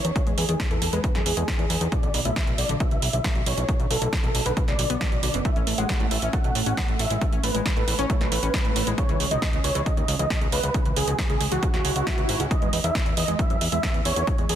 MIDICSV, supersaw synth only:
0, 0, Header, 1, 2, 480
1, 0, Start_track
1, 0, Key_signature, 4, "major"
1, 0, Tempo, 441176
1, 170, Time_signature, 4, 2, 24, 8
1, 15834, End_track
2, 0, Start_track
2, 0, Title_t, "Supersaw synth"
2, 0, Program_c, 0, 81
2, 0, Note_on_c, 0, 73, 99
2, 260, Note_off_c, 0, 73, 0
2, 410, Note_on_c, 0, 68, 96
2, 658, Note_off_c, 0, 68, 0
2, 769, Note_on_c, 0, 69, 91
2, 935, Note_off_c, 0, 69, 0
2, 1009, Note_on_c, 0, 71, 90
2, 1175, Note_off_c, 0, 71, 0
2, 1249, Note_on_c, 0, 68, 98
2, 1994, Note_off_c, 0, 68, 0
2, 2090, Note_on_c, 0, 74, 92
2, 2338, Note_off_c, 0, 74, 0
2, 2450, Note_on_c, 0, 76, 94
2, 2698, Note_off_c, 0, 76, 0
2, 2809, Note_on_c, 0, 74, 85
2, 2975, Note_off_c, 0, 74, 0
2, 3050, Note_on_c, 0, 76, 102
2, 3298, Note_off_c, 0, 76, 0
2, 3409, Note_on_c, 0, 76, 90
2, 3658, Note_off_c, 0, 76, 0
2, 3770, Note_on_c, 0, 73, 95
2, 4100, Note_off_c, 0, 73, 0
2, 4249, Note_on_c, 0, 69, 93
2, 4497, Note_off_c, 0, 69, 0
2, 4610, Note_on_c, 0, 69, 88
2, 4775, Note_off_c, 0, 69, 0
2, 4850, Note_on_c, 0, 71, 86
2, 5015, Note_off_c, 0, 71, 0
2, 5089, Note_on_c, 0, 74, 94
2, 5834, Note_off_c, 0, 74, 0
2, 5929, Note_on_c, 0, 76, 88
2, 6178, Note_off_c, 0, 76, 0
2, 6290, Note_on_c, 0, 78, 95
2, 6538, Note_off_c, 0, 78, 0
2, 6649, Note_on_c, 0, 76, 87
2, 6815, Note_off_c, 0, 76, 0
2, 6890, Note_on_c, 0, 78, 97
2, 7138, Note_off_c, 0, 78, 0
2, 7250, Note_on_c, 0, 78, 91
2, 7498, Note_off_c, 0, 78, 0
2, 7610, Note_on_c, 0, 76, 94
2, 7940, Note_off_c, 0, 76, 0
2, 8090, Note_on_c, 0, 71, 96
2, 8338, Note_off_c, 0, 71, 0
2, 8451, Note_on_c, 0, 71, 91
2, 8616, Note_off_c, 0, 71, 0
2, 8690, Note_on_c, 0, 73, 87
2, 8855, Note_off_c, 0, 73, 0
2, 8930, Note_on_c, 0, 71, 95
2, 9674, Note_off_c, 0, 71, 0
2, 9771, Note_on_c, 0, 73, 89
2, 10018, Note_off_c, 0, 73, 0
2, 10130, Note_on_c, 0, 75, 98
2, 10378, Note_off_c, 0, 75, 0
2, 10490, Note_on_c, 0, 73, 90
2, 10655, Note_off_c, 0, 73, 0
2, 10730, Note_on_c, 0, 75, 93
2, 10978, Note_off_c, 0, 75, 0
2, 11092, Note_on_c, 0, 75, 95
2, 11339, Note_off_c, 0, 75, 0
2, 11451, Note_on_c, 0, 71, 101
2, 11781, Note_off_c, 0, 71, 0
2, 11930, Note_on_c, 0, 68, 92
2, 12178, Note_off_c, 0, 68, 0
2, 12290, Note_on_c, 0, 68, 88
2, 12455, Note_off_c, 0, 68, 0
2, 12531, Note_on_c, 0, 66, 91
2, 12696, Note_off_c, 0, 66, 0
2, 12771, Note_on_c, 0, 66, 96
2, 13515, Note_off_c, 0, 66, 0
2, 13611, Note_on_c, 0, 75, 88
2, 13858, Note_off_c, 0, 75, 0
2, 13971, Note_on_c, 0, 76, 99
2, 14218, Note_off_c, 0, 76, 0
2, 14331, Note_on_c, 0, 75, 88
2, 14496, Note_off_c, 0, 75, 0
2, 14571, Note_on_c, 0, 76, 97
2, 14818, Note_off_c, 0, 76, 0
2, 14931, Note_on_c, 0, 76, 96
2, 15178, Note_off_c, 0, 76, 0
2, 15290, Note_on_c, 0, 73, 98
2, 15621, Note_off_c, 0, 73, 0
2, 15770, Note_on_c, 0, 68, 92
2, 15834, Note_off_c, 0, 68, 0
2, 15834, End_track
0, 0, End_of_file